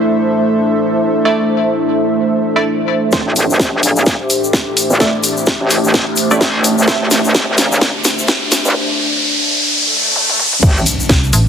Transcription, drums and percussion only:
3.12 kick loud
3.12 snare soft
3.12 shaker soft
3.36 open hi-hat loud
3.36 shaker medium
3.50 shaker soft
3.60 kick loud
3.60 snare soft
3.60 shaker soft
3.83 open hi-hat loud
3.83 shaker medium
3.96 shaker soft
4.06 kick loud
4.06 snare soft
4.06 shaker soft
4.30 open hi-hat loud
4.30 shaker medium
4.44 shaker soft
4.53 kick loud
4.53 snare medium
4.53 shaker soft
4.77 open hi-hat loud
4.77 shaker medium
4.90 shaker soft
5.00 kick loud
5.00 snare medium
5.00 shaker soft
5.24 open hi-hat loud
5.24 shaker loud
5.37 shaker soft
5.46 kick loud
5.46 snare medium
5.46 shaker soft
5.70 open hi-hat loud
5.70 shaker medium
5.84 shaker medium
5.94 kick loud
5.94 snare medium
5.94 shaker soft
6.16 open hi-hat loud
6.16 shaker loud
6.31 shaker soft
6.41 kick loud
6.41 snare medium
6.41 shaker soft
6.64 open hi-hat loud
6.64 shaker medium
6.78 shaker medium
6.87 kick loud
6.87 snare medium
6.87 shaker soft
7.11 snare medium
7.11 open hi-hat loud
7.11 shaker loud
7.25 shaker soft
7.34 kick loud
7.34 snare medium
7.34 shaker soft
7.58 snare medium
7.58 open hi-hat loud
7.58 shaker medium
7.72 shaker medium
7.81 kick loud
7.81 snare medium
7.81 shaker soft
8.04 snare medium
8.04 open hi-hat loud
8.04 shaker medium
8.18 shaker medium
8.28 kick loud
8.28 snare medium
8.28 shaker soft
8.52 snare medium
8.52 open hi-hat loud
8.52 shaker medium
8.65 shaker medium
10.16 high tom medium
10.29 high tom medium
10.39 mid tom medium
10.53 mid tom medium
10.62 kick loud
10.62 crash loud
10.62 shaker medium
10.77 shaker soft
10.86 open hi-hat loud
10.86 shaker medium
11.00 shaker soft
11.09 kick loud
11.09 snare loud
11.09 shaker medium
11.24 shaker soft
11.33 open hi-hat loud
11.33 shaker medium

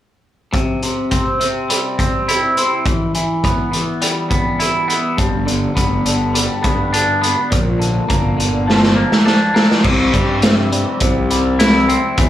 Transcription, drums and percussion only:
0.54 kick loud
0.54 closed hi-hat medium
0.83 closed hi-hat medium
1.11 kick medium
1.11 closed hi-hat medium
1.41 closed hi-hat medium
1.70 closed hi-hat medium
1.99 kick medium
1.99 closed hi-hat medium
2.29 closed hi-hat medium
2.57 closed hi-hat soft
2.86 kick loud
2.86 closed hi-hat medium
3.15 closed hi-hat medium
3.44 kick medium
3.44 closed hi-hat medium
3.73 closed hi-hat medium
4.02 closed hi-hat medium
4.31 kick medium
4.31 closed hi-hat medium
4.60 closed hi-hat medium
4.90 closed hi-hat soft
5.18 kick loud
5.18 closed hi-hat medium
5.48 closed hi-hat soft
5.77 kick medium
5.77 closed hi-hat medium
6.06 closed hi-hat medium
6.35 closed hi-hat medium
6.64 kick medium
6.64 closed hi-hat medium
6.94 closed hi-hat medium
7.23 closed hi-hat medium
7.52 kick loud
7.52 closed hi-hat medium
7.82 closed hi-hat soft
8.10 kick medium
8.10 closed hi-hat medium
8.40 closed hi-hat medium
8.70 snare medium
8.83 snare soft
9.12 snare medium
9.27 snare medium
9.56 snare medium
9.72 snare medium
9.84 kick loud
9.84 crash loud
10.14 kick medium
10.14 closed hi-hat medium
10.42 snare medium
10.42 closed hi-hat medium
10.72 closed hi-hat medium
11.00 kick loud
11.00 closed hi-hat medium
11.31 closed hi-hat medium
11.60 snare loud
11.60 closed hi-hat medium
11.89 closed hi-hat medium
12.18 kick loud
12.18 closed hi-hat medium

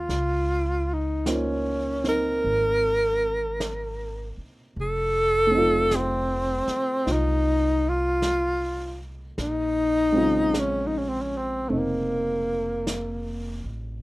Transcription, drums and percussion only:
0.09 brush sweep soft
0.09 snare soft
1.26 brush sweep soft
1.26 snare soft
1.26 hi-hat pedal soft
2.04 snare soft
2.44 brush sweep soft
3.60 brush sweep soft
3.60 snare soft
3.60 hi-hat pedal soft
4.76 brush sweep soft
5.91 brush sweep soft
5.91 snare soft
5.91 hi-hat pedal soft
6.67 snare soft
7.07 brush sweep soft
7.07 snare soft
8.22 brush sweep soft
8.22 snare soft
8.22 hi-hat pedal soft
9.38 brush sweep soft
9.38 snare soft
10.54 brush sweep soft
10.54 snare soft
10.54 hi-hat pedal medium
11.71 brush sweep soft
12.87 brush sweep soft
12.87 snare soft
12.87 hi-hat pedal soft

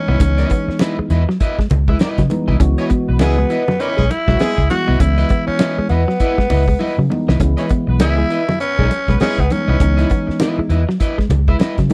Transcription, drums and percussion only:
0.20 kick loud
0.20 closed hi-hat loud
0.20 muted conga medium
0.38 snare soft
0.38 closed hi-hat soft
0.50 kick medium
0.50 closed hi-hat medium
0.70 snare soft
0.79 snare loud
0.79 closed hi-hat medium
0.79 high conga medium
1.10 closed hi-hat medium
1.30 snare soft
1.40 kick medium
1.40 closed hi-hat medium
1.59 kick medium
1.59 snare soft
1.70 closed hi-hat medium
1.70 muted conga soft
1.70 low conga medium
1.88 kick loud
1.99 snare loud
1.99 closed hi-hat medium
1.99 high conga medium
2.18 kick medium
2.18 snare soft
2.18 closed hi-hat soft
2.30 closed hi-hat medium
2.30 high conga medium
2.48 kick medium
2.60 kick loud
2.60 closed hi-hat medium
2.60 muted conga medium
2.78 snare soft
2.78 closed hi-hat soft
2.90 kick loud
2.90 closed hi-hat medium
2.90 muted conga soft
3.19 snare loud
3.19 closed hi-hat medium
3.19 high conga medium
3.50 closed hi-hat medium
3.68 snare soft
3.68 low conga medium
3.80 closed hi-hat medium
3.99 kick medium
4.11 closed hi-hat medium
4.11 muted conga soft
4.28 kick loud
4.28 snare soft
4.39 snare loud
4.39 closed hi-hat medium
4.39 high conga medium
4.58 kick medium
4.70 closed hi-hat medium
4.70 high conga medium
5.00 kick loud
5.00 closed hi-hat loud
5.00 muted conga medium
5.18 snare soft
5.18 closed hi-hat soft
5.29 kick loud
5.29 closed hi-hat medium
5.29 muted conga soft
5.59 snare loud
5.59 closed hi-hat medium
5.59 high conga medium
5.89 closed hi-hat medium
6.09 snare soft
6.20 kick medium
6.20 closed hi-hat medium
6.38 kick medium
6.38 snare soft
6.50 open hi-hat medium
6.50 muted conga medium
6.50 low conga medium
6.68 kick medium
6.81 high conga medium
7.12 high conga medium
7.29 snare medium
7.40 kick loud
7.40 closed hi-hat medium
7.40 muted conga medium
7.58 snare soft
7.58 closed hi-hat soft
7.69 kick loud
7.69 closed hi-hat medium
7.69 muted conga soft
7.99 snare loud
7.99 closed hi-hat loud
7.99 high conga medium
8.30 closed hi-hat medium
8.49 snare soft
8.49 low conga medium
8.60 closed hi-hat medium
8.79 kick medium
8.91 closed hi-hat medium
8.91 muted conga medium
9.08 kick loud
9.08 snare soft
9.20 snare loud
9.20 closed hi-hat medium
9.20 high conga medium
9.38 kick medium
9.50 closed hi-hat medium
9.50 high conga medium
9.80 kick loud
9.80 closed hi-hat medium
9.80 muted conga medium
9.98 snare soft
9.98 closed hi-hat soft
10.10 kick loud
10.10 closed hi-hat medium
10.10 muted conga soft
10.30 snare soft
10.40 snare loud
10.40 closed hi-hat medium
10.40 high conga medium
10.70 closed hi-hat medium
10.90 snare soft
11.00 kick medium
11.00 closed hi-hat medium
11.19 kick medium
11.19 snare soft
11.30 closed hi-hat medium
11.30 muted conga medium
11.30 low conga medium
11.48 kick medium
11.59 snare loud
11.59 closed hi-hat medium
11.59 high conga medium
11.78 kick medium
11.78 snare soft
11.78 closed hi-hat soft
11.90 closed hi-hat medium

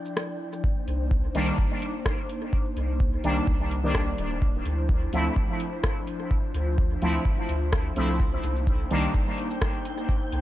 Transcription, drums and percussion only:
0.06 shaker soft
0.17 cross-stick medium
0.17 shaker soft
0.53 shaker soft
0.64 kick loud
0.88 closed hi-hat medium
1.11 kick loud
1.35 closed hi-hat medium
1.58 kick loud
1.82 closed hi-hat medium
2.06 kick loud
2.06 cross-stick medium
2.29 closed hi-hat medium
2.53 kick loud
2.77 closed hi-hat medium
3.00 kick loud
3.24 closed hi-hat medium
3.47 kick loud
3.71 closed hi-hat medium
3.95 kick loud
3.95 cross-stick medium
4.18 closed hi-hat medium
4.42 kick loud
4.66 closed hi-hat medium
4.89 kick loud
5.13 closed hi-hat medium
5.36 kick loud
5.60 closed hi-hat medium
5.84 kick loud
5.84 cross-stick medium
6.07 closed hi-hat medium
6.31 kick loud
6.54 closed hi-hat medium
6.78 kick loud
7.02 closed hi-hat medium
7.25 kick loud
7.49 closed hi-hat medium
7.73 kick loud
7.73 cross-stick medium
7.96 closed hi-hat medium
8.20 kick loud
8.20 shaker soft
8.43 closed hi-hat medium
8.56 shaker soft
8.67 kick loud
8.67 shaker soft
8.91 closed hi-hat medium
9.03 shaker soft
9.14 kick loud
9.14 shaker soft
9.27 shaker soft
9.38 closed hi-hat medium
9.50 shaker soft
9.62 kick loud
9.62 cross-stick medium
9.62 shaker soft
9.74 shaker soft
9.85 closed hi-hat medium
9.98 shaker soft
10.09 kick loud
10.09 shaker soft
10.32 closed hi-hat medium

